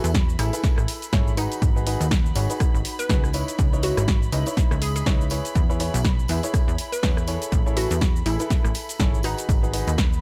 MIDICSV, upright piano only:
0, 0, Header, 1, 2, 480
1, 0, Start_track
1, 0, Key_signature, 4, "minor"
1, 0, Tempo, 491803
1, 1581, Time_signature, 4, 2, 24, 8
1, 9965, End_track
2, 0, Start_track
2, 0, Title_t, "Upright piano"
2, 0, Program_c, 0, 0
2, 380, Note_on_c, 0, 64, 75
2, 380, Note_on_c, 0, 76, 83
2, 381, Note_on_c, 0, 68, 68
2, 381, Note_on_c, 0, 69, 71
2, 498, Note_off_c, 0, 64, 0
2, 498, Note_off_c, 0, 68, 0
2, 498, Note_off_c, 0, 69, 0
2, 498, Note_off_c, 0, 76, 0
2, 518, Note_on_c, 0, 64, 75
2, 518, Note_on_c, 0, 68, 68
2, 518, Note_on_c, 0, 69, 70
2, 518, Note_on_c, 0, 71, 80
2, 1076, Note_off_c, 0, 64, 0
2, 1076, Note_off_c, 0, 68, 0
2, 1076, Note_off_c, 0, 69, 0
2, 1076, Note_off_c, 0, 71, 0
2, 1100, Note_on_c, 0, 64, 83
2, 1100, Note_on_c, 0, 68, 80
2, 1100, Note_on_c, 0, 73, 97
2, 1101, Note_on_c, 0, 69, 76
2, 1275, Note_off_c, 0, 64, 0
2, 1275, Note_off_c, 0, 68, 0
2, 1275, Note_off_c, 0, 69, 0
2, 1275, Note_off_c, 0, 73, 0
2, 1340, Note_on_c, 0, 63, 77
2, 1340, Note_on_c, 0, 66, 67
2, 1340, Note_on_c, 0, 68, 69
2, 1340, Note_on_c, 0, 71, 83
2, 1685, Note_off_c, 0, 63, 0
2, 1685, Note_off_c, 0, 66, 0
2, 1685, Note_off_c, 0, 68, 0
2, 1685, Note_off_c, 0, 71, 0
2, 1718, Note_on_c, 0, 63, 79
2, 1718, Note_on_c, 0, 66, 70
2, 1718, Note_on_c, 0, 68, 72
2, 1718, Note_on_c, 0, 71, 85
2, 1805, Note_off_c, 0, 63, 0
2, 1805, Note_off_c, 0, 66, 0
2, 1805, Note_off_c, 0, 68, 0
2, 1805, Note_off_c, 0, 71, 0
2, 1820, Note_on_c, 0, 66, 86
2, 1820, Note_on_c, 0, 68, 88
2, 1820, Note_on_c, 0, 71, 102
2, 1821, Note_on_c, 0, 63, 97
2, 1995, Note_off_c, 0, 63, 0
2, 1995, Note_off_c, 0, 66, 0
2, 1995, Note_off_c, 0, 68, 0
2, 1995, Note_off_c, 0, 71, 0
2, 2300, Note_on_c, 0, 63, 73
2, 2300, Note_on_c, 0, 66, 67
2, 2300, Note_on_c, 0, 68, 67
2, 2300, Note_on_c, 0, 73, 81
2, 2418, Note_off_c, 0, 63, 0
2, 2418, Note_off_c, 0, 66, 0
2, 2418, Note_off_c, 0, 68, 0
2, 2418, Note_off_c, 0, 73, 0
2, 2438, Note_on_c, 0, 63, 73
2, 2438, Note_on_c, 0, 66, 70
2, 2438, Note_on_c, 0, 68, 66
2, 2438, Note_on_c, 0, 71, 78
2, 2996, Note_off_c, 0, 63, 0
2, 2996, Note_off_c, 0, 66, 0
2, 2996, Note_off_c, 0, 68, 0
2, 2996, Note_off_c, 0, 71, 0
2, 3020, Note_on_c, 0, 63, 87
2, 3020, Note_on_c, 0, 66, 80
2, 3020, Note_on_c, 0, 68, 81
2, 3020, Note_on_c, 0, 71, 99
2, 3195, Note_off_c, 0, 63, 0
2, 3195, Note_off_c, 0, 66, 0
2, 3195, Note_off_c, 0, 68, 0
2, 3195, Note_off_c, 0, 71, 0
2, 3260, Note_on_c, 0, 63, 75
2, 3260, Note_on_c, 0, 64, 68
2, 3260, Note_on_c, 0, 71, 68
2, 3260, Note_on_c, 0, 73, 79
2, 3605, Note_off_c, 0, 63, 0
2, 3605, Note_off_c, 0, 64, 0
2, 3605, Note_off_c, 0, 71, 0
2, 3605, Note_off_c, 0, 73, 0
2, 3639, Note_on_c, 0, 63, 82
2, 3639, Note_on_c, 0, 64, 70
2, 3639, Note_on_c, 0, 71, 73
2, 3639, Note_on_c, 0, 73, 87
2, 3725, Note_off_c, 0, 64, 0
2, 3725, Note_off_c, 0, 71, 0
2, 3725, Note_off_c, 0, 73, 0
2, 3726, Note_off_c, 0, 63, 0
2, 3740, Note_on_c, 0, 71, 88
2, 3740, Note_on_c, 0, 73, 100
2, 3741, Note_on_c, 0, 63, 90
2, 3741, Note_on_c, 0, 64, 86
2, 3915, Note_off_c, 0, 63, 0
2, 3915, Note_off_c, 0, 64, 0
2, 3915, Note_off_c, 0, 71, 0
2, 3915, Note_off_c, 0, 73, 0
2, 4220, Note_on_c, 0, 64, 69
2, 4220, Note_on_c, 0, 71, 66
2, 4221, Note_on_c, 0, 63, 77
2, 4221, Note_on_c, 0, 75, 80
2, 4338, Note_off_c, 0, 63, 0
2, 4338, Note_off_c, 0, 64, 0
2, 4338, Note_off_c, 0, 71, 0
2, 4338, Note_off_c, 0, 75, 0
2, 4357, Note_on_c, 0, 63, 76
2, 4357, Note_on_c, 0, 73, 78
2, 4358, Note_on_c, 0, 64, 68
2, 4358, Note_on_c, 0, 71, 69
2, 4916, Note_off_c, 0, 63, 0
2, 4916, Note_off_c, 0, 64, 0
2, 4916, Note_off_c, 0, 71, 0
2, 4916, Note_off_c, 0, 73, 0
2, 4940, Note_on_c, 0, 63, 89
2, 4940, Note_on_c, 0, 64, 77
2, 4940, Note_on_c, 0, 71, 77
2, 4940, Note_on_c, 0, 73, 94
2, 5115, Note_off_c, 0, 63, 0
2, 5115, Note_off_c, 0, 64, 0
2, 5115, Note_off_c, 0, 71, 0
2, 5115, Note_off_c, 0, 73, 0
2, 5180, Note_on_c, 0, 64, 72
2, 5180, Note_on_c, 0, 68, 66
2, 5180, Note_on_c, 0, 71, 69
2, 5180, Note_on_c, 0, 73, 79
2, 5525, Note_off_c, 0, 64, 0
2, 5525, Note_off_c, 0, 68, 0
2, 5525, Note_off_c, 0, 71, 0
2, 5525, Note_off_c, 0, 73, 0
2, 5558, Note_on_c, 0, 71, 73
2, 5558, Note_on_c, 0, 73, 86
2, 5559, Note_on_c, 0, 64, 81
2, 5559, Note_on_c, 0, 68, 69
2, 5645, Note_off_c, 0, 64, 0
2, 5645, Note_off_c, 0, 68, 0
2, 5645, Note_off_c, 0, 71, 0
2, 5645, Note_off_c, 0, 73, 0
2, 5660, Note_on_c, 0, 73, 104
2, 5661, Note_on_c, 0, 64, 94
2, 5661, Note_on_c, 0, 68, 84
2, 5661, Note_on_c, 0, 71, 88
2, 5835, Note_off_c, 0, 64, 0
2, 5835, Note_off_c, 0, 68, 0
2, 5835, Note_off_c, 0, 71, 0
2, 5835, Note_off_c, 0, 73, 0
2, 6140, Note_on_c, 0, 64, 74
2, 6140, Note_on_c, 0, 68, 71
2, 6140, Note_on_c, 0, 71, 71
2, 6140, Note_on_c, 0, 76, 80
2, 6258, Note_off_c, 0, 64, 0
2, 6258, Note_off_c, 0, 68, 0
2, 6258, Note_off_c, 0, 71, 0
2, 6258, Note_off_c, 0, 76, 0
2, 6279, Note_on_c, 0, 64, 76
2, 6279, Note_on_c, 0, 68, 70
2, 6279, Note_on_c, 0, 71, 66
2, 6279, Note_on_c, 0, 73, 80
2, 6836, Note_off_c, 0, 64, 0
2, 6836, Note_off_c, 0, 68, 0
2, 6836, Note_off_c, 0, 71, 0
2, 6836, Note_off_c, 0, 73, 0
2, 6860, Note_on_c, 0, 68, 74
2, 6861, Note_on_c, 0, 64, 89
2, 6861, Note_on_c, 0, 71, 76
2, 6861, Note_on_c, 0, 73, 92
2, 7035, Note_off_c, 0, 64, 0
2, 7035, Note_off_c, 0, 68, 0
2, 7035, Note_off_c, 0, 71, 0
2, 7035, Note_off_c, 0, 73, 0
2, 7101, Note_on_c, 0, 64, 77
2, 7101, Note_on_c, 0, 68, 69
2, 7101, Note_on_c, 0, 69, 70
2, 7101, Note_on_c, 0, 73, 86
2, 7446, Note_off_c, 0, 64, 0
2, 7446, Note_off_c, 0, 68, 0
2, 7446, Note_off_c, 0, 69, 0
2, 7446, Note_off_c, 0, 73, 0
2, 7478, Note_on_c, 0, 64, 80
2, 7478, Note_on_c, 0, 68, 71
2, 7478, Note_on_c, 0, 69, 75
2, 7478, Note_on_c, 0, 73, 82
2, 7565, Note_off_c, 0, 64, 0
2, 7565, Note_off_c, 0, 68, 0
2, 7565, Note_off_c, 0, 69, 0
2, 7565, Note_off_c, 0, 73, 0
2, 7580, Note_on_c, 0, 64, 93
2, 7580, Note_on_c, 0, 68, 89
2, 7580, Note_on_c, 0, 69, 88
2, 7580, Note_on_c, 0, 71, 102
2, 7755, Note_off_c, 0, 64, 0
2, 7755, Note_off_c, 0, 68, 0
2, 7755, Note_off_c, 0, 69, 0
2, 7755, Note_off_c, 0, 71, 0
2, 8060, Note_on_c, 0, 64, 76
2, 8060, Note_on_c, 0, 68, 70
2, 8060, Note_on_c, 0, 69, 66
2, 8060, Note_on_c, 0, 76, 83
2, 8178, Note_off_c, 0, 64, 0
2, 8178, Note_off_c, 0, 68, 0
2, 8178, Note_off_c, 0, 69, 0
2, 8178, Note_off_c, 0, 76, 0
2, 8198, Note_on_c, 0, 64, 76
2, 8198, Note_on_c, 0, 68, 68
2, 8198, Note_on_c, 0, 69, 68
2, 8198, Note_on_c, 0, 71, 82
2, 8756, Note_off_c, 0, 64, 0
2, 8756, Note_off_c, 0, 68, 0
2, 8756, Note_off_c, 0, 69, 0
2, 8756, Note_off_c, 0, 71, 0
2, 8780, Note_on_c, 0, 64, 84
2, 8780, Note_on_c, 0, 68, 77
2, 8780, Note_on_c, 0, 69, 76
2, 8780, Note_on_c, 0, 73, 90
2, 8955, Note_off_c, 0, 64, 0
2, 8955, Note_off_c, 0, 68, 0
2, 8955, Note_off_c, 0, 69, 0
2, 8955, Note_off_c, 0, 73, 0
2, 9020, Note_on_c, 0, 63, 74
2, 9020, Note_on_c, 0, 66, 72
2, 9020, Note_on_c, 0, 68, 68
2, 9020, Note_on_c, 0, 71, 82
2, 9365, Note_off_c, 0, 63, 0
2, 9365, Note_off_c, 0, 66, 0
2, 9365, Note_off_c, 0, 68, 0
2, 9365, Note_off_c, 0, 71, 0
2, 9398, Note_on_c, 0, 63, 79
2, 9398, Note_on_c, 0, 66, 71
2, 9398, Note_on_c, 0, 68, 73
2, 9398, Note_on_c, 0, 71, 88
2, 9485, Note_off_c, 0, 63, 0
2, 9485, Note_off_c, 0, 66, 0
2, 9485, Note_off_c, 0, 68, 0
2, 9485, Note_off_c, 0, 71, 0
2, 9500, Note_on_c, 0, 63, 96
2, 9500, Note_on_c, 0, 66, 86
2, 9500, Note_on_c, 0, 68, 84
2, 9500, Note_on_c, 0, 71, 108
2, 9675, Note_off_c, 0, 63, 0
2, 9675, Note_off_c, 0, 66, 0
2, 9675, Note_off_c, 0, 68, 0
2, 9675, Note_off_c, 0, 71, 0
2, 9965, End_track
0, 0, End_of_file